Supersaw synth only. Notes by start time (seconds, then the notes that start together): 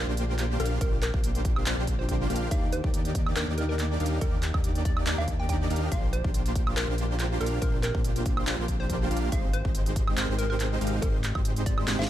0.07 A#3 D4 F4 G4 C5
0.60 A#3 D4 F4 G4 F5
0.81 A#3 D4 F4 G4 C5
1.14 A#3 D4 F4 G4 C5
1.66 A#3 D4 F4 G4 C5
1.77 A#3 D4 F4 G4 C5
2.30 A#3 D4 F4 G4 F5
2.51 A#3 D4 D#4 G4 D5
2.84 A#3 D4 D#4 G4 D5
3.36 A#3 D4 D#4 G4 D5
3.48 A#3 D4 D#4 G4 D5
4.00 A#3 D4 D#4 G4 F5
4.21 A#3 D4 G4 D5
4.54 A#3 D4 D#4 G4 D5
5.06 A#3 D4 D#4 G4 D5
5.18 A#3 D4 D#4 G4 D5
5.70 A#3 D4 D#4 G4 F5
5.92 A#3 D4 F4 G4 C5
6.24 A#3 D4 F4 G4 C5
6.77 A#3 D4 F4 G4 C5
6.88 A#3 D4 F4 G4 C5
7.41 A#3 D4 F4 G4 F5
7.62 A#3 F4 C5
7.95 A#3 D4 F4 G4 C5
8.47 A#3 D4 F4 G4 C5
8.58 A#3 D4 F4 G4 C5
9.11 A#3 D4 F4 G4 F5
9.32 G#3 C4 D#4 G4 C5
9.65 G#3 C4 D#4 G4 C5
10.17 G#3 C4 D#4 G4 C5
10.29 G#3 C4 D#4 G4 C5
10.81 G#3 C4 D#4 G4 F5
11.02 G#3 C4 G4 C5
11.35 G#3 C4 D#4 G4 C5
11.87 G#3 C4 D#4 G4 C5
11.99 G#3 C4 D#4 G4 C5